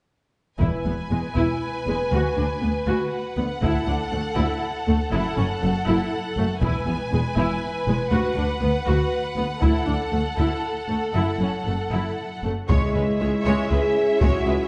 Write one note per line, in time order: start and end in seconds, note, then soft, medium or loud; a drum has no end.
0.60 0.68 E1 soft
0.60 0.69 E2 soft
0.60 0.83 E4 soft
0.60 3.59 B4 soft
0.60 3.08 G#5 soft
0.60 taiko soft
0.85 0.93 E1 soft
0.85 0.93 E2 soft
0.85 0.94 B3 soft
1.11 1.19 E1 soft
1.11 1.19 E2 soft
1.11 1.19 G#3 soft
1.36 1.44 E1 soft
1.36 1.44 E2 soft
1.36 1.60 E4 soft
1.36 taiko soft
1.86 1.94 E1 soft
1.86 1.94 E2 soft
1.86 1.95 G#3 soft
2.11 2.19 D2 soft
2.11 2.36 F#4 soft
2.37 2.45 D2 soft
2.37 2.45 D4 soft
2.62 2.70 D2 soft
2.62 2.71 D2 soft
2.62 2.70 B3 soft
2.87 2.95 D2 soft
2.87 2.96 D2 soft
2.87 3.10 F#4 soft
3.13 5.13 F#5 soft
3.37 3.45 D2 soft
3.37 3.46 D2 soft
3.37 3.45 B3 soft
3.61 3.70 D2 medium
3.61 3.85 E4 soft
3.61 6.57 A4 soft
3.61 taiko soft
3.87 3.95 D2 soft
3.87 3.95 D4 soft
4.12 4.20 D2 soft
4.12 4.20 A3 soft
4.36 4.44 D2 medium
4.36 4.45 D2 soft
4.36 4.60 E4 soft
4.87 4.96 D2 soft
4.87 4.95 A3 soft
5.12 5.20 F#1 medium
5.12 5.20 F#2 medium
5.12 5.35 E4 medium
5.12 6.60 F#5 soft
5.37 5.46 F#1 soft
5.37 5.45 F#2 soft
5.37 5.45 C#4 soft
5.61 5.71 F#1 soft
5.61 5.70 F#2 soft
5.61 5.69 A3 soft
5.87 5.95 F#1 medium
5.87 5.95 F#2 medium
5.87 6.10 E4 soft
6.37 6.45 F#1 soft
6.37 6.45 F#2 soft
6.37 6.45 A3 soft
6.61 6.70 E1 medium
6.61 6.70 E2 medium
6.61 6.86 E4 soft
6.61 9.58 B4 medium
6.61 8.08 G#5 soft
6.61 taiko soft
6.87 6.95 E1 soft
6.87 6.95 E2 soft
6.87 6.96 B3 soft
7.11 7.19 E1 soft
7.11 7.20 E2 soft
7.11 7.21 G#3 soft
7.36 7.45 E1 medium
7.36 7.44 E2 medium
7.36 7.60 E4 medium
7.87 7.95 E1 soft
7.87 7.95 E2 soft
7.87 7.96 G#3 soft
8.11 8.19 D2 medium
8.11 8.20 D2 medium
8.11 8.35 F#4 soft
8.11 11.11 F#5 soft
8.36 8.44 D2 soft
8.36 8.46 D2 soft
8.36 8.45 D4 soft
8.61 8.69 D2 soft
8.61 8.70 D2 soft
8.61 8.69 B3 soft
8.86 8.94 D2 medium
8.86 8.95 D2 medium
8.86 9.10 F#4 medium
9.36 9.44 D2 soft
9.36 9.45 D2 soft
9.36 9.45 B3 soft
9.61 9.70 D2 medium
9.61 9.70 D2 soft
9.61 9.85 E4 soft
9.61 12.45 A4 soft
9.61 taiko soft
9.87 9.95 D2 soft
9.87 9.96 D2 soft
9.87 9.95 D4 soft
10.11 10.19 D2 soft
10.11 10.21 D2 soft
10.11 10.20 A3 soft
10.37 10.45 D2 soft
10.37 10.46 D2 soft
10.37 10.62 E4 soft
10.89 10.97 D2 soft
10.89 10.97 A3 soft
11.13 11.22 F#1 soft
11.13 11.22 F#2 soft
11.13 11.39 E4 soft
11.13 12.46 F#5 soft
11.39 11.47 F#1 soft
11.39 11.48 F#2 soft
11.39 11.50 C#4 soft
11.66 11.74 F#1 soft
11.66 11.74 F#2 soft
11.66 11.75 A3 soft
11.92 12.00 F#1 soft
11.92 12.00 F#2 soft
11.92 12.16 E4 soft
12.43 12.51 F#1 soft
12.43 12.52 F#2 soft
12.43 12.52 A3 soft
12.69 12.77 C#2 soft
12.69 12.78 C#2 soft
12.69 13.66 G#3 medium
12.69 12.93 G#3 soft
12.69 14.68 C#4 soft
12.69 14.68 E4 soft
12.69 14.68 G#4 soft
12.69 12.93 C#5 soft
12.69 14.68 E5 soft
12.69 taiko medium
12.94 13.03 C#2 soft
12.94 13.04 C#2 soft
12.94 13.04 G#3 soft
12.94 13.02 B4 soft
13.20 13.29 C#2 soft
13.20 13.29 G#3 soft
13.20 13.28 C#5 soft
13.45 13.54 C#2 soft
13.45 13.69 G#3 soft
13.45 13.68 C#5 soft
13.70 13.79 C#2 soft
13.70 13.79 G#3 soft
13.70 14.21 G#4 medium
13.70 13.78 B4 soft
14.20 14.29 C#2 soft
14.20 14.30 C#2 soft
14.20 14.44 G#3 soft
14.20 14.68 F#4 medium
14.20 14.43 C#5 soft
14.20 taiko medium
14.46 14.54 C#2 soft
14.46 14.54 G#3 soft
14.46 14.54 B4 soft